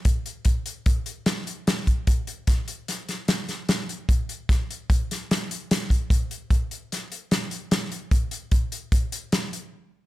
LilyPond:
\new DrumStaff \with { instrumentName = "Drums" } \drummode { \time 5/4 \tempo 4 = 149 <hh bd>8 hh8 <hh bd>8 hh8 <hh bd>8 hh8 <hh sn>8 hh8 <hh sn>8 <hh bd>8 | <hh bd>8 hh8 <hh bd sn>8 hh8 <hh sn>8 <hh sn>8 <hh sn>8 <hh sn>8 <hh sn>8 hh8 | <hh bd>8 hh8 <hh bd sn>8 hh8 <hh bd>8 <hh sn>8 <hh sn>8 hh8 <hh sn>8 <hh bd>8 | <hh bd>8 hh8 <hh bd>8 hh8 <hh sn>8 hh8 <hh sn>8 hh8 <hh sn>8 hh8 |
<hh bd>8 hh8 <hh bd>8 hh8 <hh bd>8 hh8 <hh sn>8 hh8 r4 | }